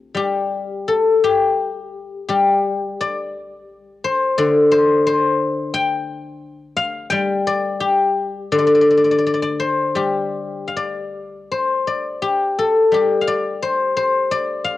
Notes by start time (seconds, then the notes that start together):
Already playing: A3 C4 D4 F4 G4 A4
0.15 G3 G4
0.88 A4
1.24 G4
2.29 G3 G4
3.01 D5
4.04 C5
4.38 D3 D5
4.72 C5
5.07 C5
5.74 G5
6.77 F5
7.10 G3 G5
7.47 D5
7.80 G4
8.52 D3 D5
8.59 D5
8.67 D5
8.75 D5
8.81 D5
8.91 D5
8.97 D5
9.04 D5
9.11 D5
9.18 D5
9.26 D5
9.34 D5
9.42 D5
9.60 C5
9.95 G3 G4
10.67 F5
10.76 D5
11.52 C5
11.87 D5
12.22 G4
12.59 A4
12.92 G3 G4
13.21 F5
13.27 D5
13.62 C5
13.97 C5
14.31 D5
14.65 F5